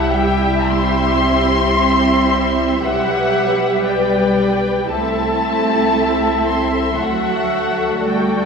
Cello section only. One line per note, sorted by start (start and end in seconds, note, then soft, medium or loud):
0.00 0.14 F#3 medium
0.14 0.71 G3 medium
0.71 2.82 C4 medium
2.82 3.82 F#3 medium
3.85 4.89 G3 medium
4.89 6.46 A3 medium
6.46 6.98 C4 medium
6.98 8.01 F#3 medium
8.05 8.45 G3 medium